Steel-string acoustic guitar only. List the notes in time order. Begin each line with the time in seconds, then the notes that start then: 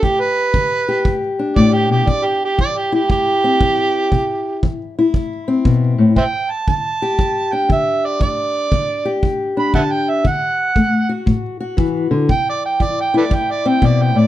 Already playing: G4
0.04 G2
0.53 D3
0.88 G4
1.06 G2
1.39 D4
1.56 A2
1.90 B2
2.06 C3
2.58 E3
2.92 E4
3.10 G2
3.44 C4
3.61 E3
4.12 C3
4.63 E3
4.99 E4
5.14 G2
5.48 C4
5.65 B2
5.98 A2
6.16 G2
6.69 D3
7.02 G4
7.19 G2
7.53 D4
7.69 D3
8.20 G2
8.72 D3
9.05 G4
9.23 G2
9.57 D4
9.75 D3
10.24 D3
10.76 A3
11.09 F#4
11.26 A2
11.60 F#4
11.77 E3
12.11 D3
12.29 C3
12.80 E3
13.14 E4
13.29 G2
13.66 C4
13.82 B2
14.15 A2